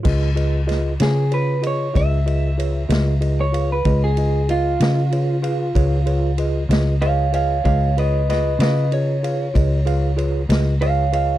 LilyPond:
<<
  \new Staff \with { instrumentName = "Clean electric guitar" } { \time 12/8 \key des \mixolydian \tempo 4. = 63 r4. aes'8 ces''8 des''8 fes''2~ fes''16 des''8 ces''16~ | ces''16 aes'8. f'2. r4 <des'' f''>8 <des'' f''>8 | <des'' f''>8 <ces'' ees''>8 <ces'' ees''>8 <ces'' ees''>8 des''2 r4 <des'' f''>8 <des'' f''>8 | }
  \new Staff \with { instrumentName = "Tine electric piano" } { \time 12/8 \key des \mixolydian <f' aes' ces'' ees''>8 <f' aes' ces'' ees''>8 <f' aes' ces'' ees''>8 <f' aes' ces'' des''>8 <f' aes' ces'' des''>8 <f' aes' ces'' ees''>8 <f' aes' ces'' ees''>8 <f' aes' ces'' ees''>8 <f' aes' ces'' des''>8 <f' aes' ces'' ees''>8 <f' aes' ces'' ees''>8 <f' aes' ces'' f''>8 | <f' aes' ces'' ees''>8 <f' aes' ces'' ees''>8 <f' aes' ces'' ees''>8 <f' aes' ces'' ees''>8 <f' aes' ces'' des''>8 <f' aes' ces'' f''>8 <f' aes' ces'' des''>8 <f' aes' ces'' des''>8 <f' aes' ces'' ees''>8 <f' aes' ces'' ees''>8 <f' aes' ces'' ees''>8 <f' aes' ces'' ees''>8 | <f' aes' ces'' ees''>8 <f' aes' ces'' des''>8 <f' aes' ces'' ees''>8 <f' aes' ces'' f''>8 <f' aes' ces'' ees''>8 <f' aes' ces'' f''>8 <f' aes' ces'' ees''>8 <f' aes' ces'' f''>8 <f' aes' ces'' des''>8 <f' aes' ces'' ees''>8 <f' aes' ces'' des''>8 <f' aes' ces'' ees''>8 | }
  \new Staff \with { instrumentName = "Fingered electric bass" } { \clef bass \time 12/8 \key des \mixolydian des,4. des4. des,4. des,4. | des,4. des4. des,4. des,4. | des,4. des4. des,4. des,4. | }
  \new DrumStaff \with { instrumentName = "Drums" } \drummode { \time 12/8 <cymc bd>8 cymr8 <cymr sn>8 <cymr sn>8 cymr8 cymr8 <bd cymr>8 cymr8 cymr8 <cymr sn>8 cymr8 cymr8 | <bd cymr>8 cymr8 cymr8 <cymr sn>8 cymr8 cymr8 <bd cymr>8 cymr8 cymr8 <cymr sn>8 cymr8 cymr8 | <bd cymr>8 cymr8 <cymr sn>8 <cymr sn>8 cymr8 cymr8 <bd cymr>8 cymr8 cymr8 <cymr sn>8 cymr8 cymr8 | }
>>